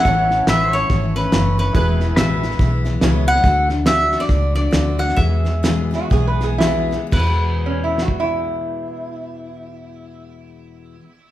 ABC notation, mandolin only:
X:1
M:4/4
L:1/16
Q:"Swing" 1/4=133
K:Emix
V:1 name="Mandolin"
f4 e2 c4 B4 B2 | B8 z6 f2- | f2 z2 e3 d3 d4 f2 | e12 z4 |
B16- | B16 |]